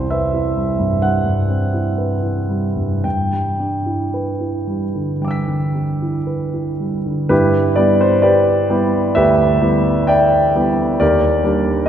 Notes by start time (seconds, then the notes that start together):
Already playing: C2 G3 C4 E4 C5
0.10 B4 E5
0.34 E4
0.56 G3
0.79 G2
1.02 G3 F#5
1.26 G2
1.50 C4
1.74 E4
1.98 B4
2.23 E4
2.49 G3
2.77 G2
3.04 G2 G5
3.32 G3
3.60 D4
3.86 E4
4.14 B4
4.41 E4
4.67 G3
4.95 D3
5.21 G3 G5 D6
5.28 E6 B6
5.48 D3
5.75 D4
6.02 E4
6.27 B4
6.54 E4
6.80 G3
7.06 D3
7.29 G2 E4 G4 B4
7.76 G3 B3 E4 G4 D5
8.01 C5
8.22 G4 B4 D5
8.70 G3 B3 E4 G4
9.15 D2 G4 B4 E5
9.61 G3 B3 E4 G4
10.07 D5 E5 G5
10.55 G3 B3 E4 G4
11.00 D#2 G4 A#4 D5
11.44 G3 A#3 D4 G4
11.86 D#5